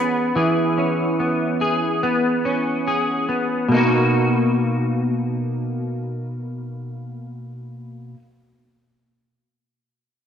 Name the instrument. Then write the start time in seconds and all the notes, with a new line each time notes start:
clean electric guitar
Already playing: E3 B3 C#4 G#4
0.36 E3 G#4
0.78 C#4
1.20 B3
1.61 G#4
2.03 B3
2.45 C#4
2.88 G#4
3.29 B3
3.69 B2 A#3
3.74 D#4 F#4